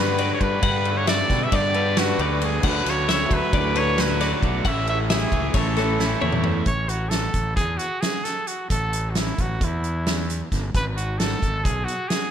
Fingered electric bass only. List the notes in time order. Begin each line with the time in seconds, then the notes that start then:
Already playing: G2
0.41 G2
0.63 G2
1.30 B2
1.52 G2
2.19 D2
2.63 D2
2.86 D2
3.31 D2
3.53 D2
4.42 B1
4.65 A1
5.32 C#2
5.54 A1
6.22 E2
6.66 A1
7.34 A1
7.57 E2
8.71 A1
9.39 A1
9.61 E2
10.52 G1
10.74 G#1
11.42 G#1
11.65 B1